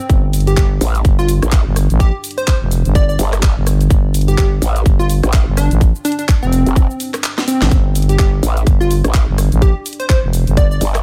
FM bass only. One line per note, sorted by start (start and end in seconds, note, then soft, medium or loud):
0.10 0.56 G1 loud
0.57 0.79 G1 loud
1.05 1.40 G1 loud
1.66 1.88 G1 loud
1.90 2.12 A1 loud
2.62 2.83 F1 loud
2.85 3.18 G1 loud
3.57 3.89 G1 loud
3.90 4.37 G1 loud
4.38 4.60 G1 loud
4.86 5.21 G1 loud
5.47 5.69 G1 loud
5.71 5.93 A1 loud
6.43 6.64 F1 loud
7.62 7.70 A1 loud
7.71 8.18 G1 loud
8.19 8.41 G1 loud
8.67 9.02 G1 loud
9.28 9.50 G1 loud
9.52 9.74 A1 loud
10.23 10.45 F1 medium
10.47 10.79 G1 medium